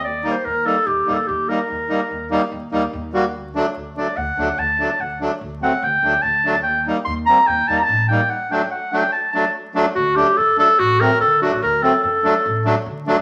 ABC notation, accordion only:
X:1
M:4/4
L:1/16
Q:1/4=145
K:none
V:1 name="Accordion"
z2 [G,_B,_E] z3 [G,B,E] z3 [G,B,E] z3 [G,B,E] z | z2 [G,_B,_E] z3 [G,B,E] z3 [G,B,E] z3 [G,B,^F] z | z2 [^F,A,D] z3 [F,A,D] z3 [F,A,D] z3 [F,A,D] z | z2 [^F,A,D] z3 [F,A,C] z3 [F,A,D] z3 [F,A,D] z |
z2 [G,_B,_E] z3 [G,B,C] z3 [G,B,E] z3 [G,B,E] z | z2 [^F,A,D] z3 [F,A,D] z3 [F,A,D] z3 [F,A,D] z | z2 [^F,A,D] z3 [F,A,D] z3 [F,A,C] z3 [F,A,D] z | z2 [^F,A,C] z3 [F,A,D] z3 [F,A,D] z3 [F,A,D] z |]